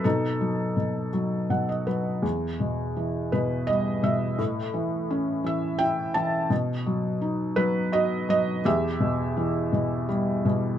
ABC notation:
X:1
M:6/8
L:1/16
Q:3/8=56
K:Em
V:1 name="Felt piano"
[^DA]6 z2 f ^d B2 | z6 B2 ^d2 e2 | z6 e2 g2 a2 | z6 B2 ^d2 d2 |
[Ge]8 z4 |]
V:2 name="Felt piano" clef=bass
B,,2 F,2 B,,2 F,2 B,,2 F,2 | E,,2 B,,2 E,2 B,,2 G,2 B,,2 | A,,2 E,2 ^C2 E,2 E2 E,2 | B,,2 F,2 ^D2 F,2 F2 F,2 |
E,,2 B,,2 E,2 B,,2 G,2 B,,2 |]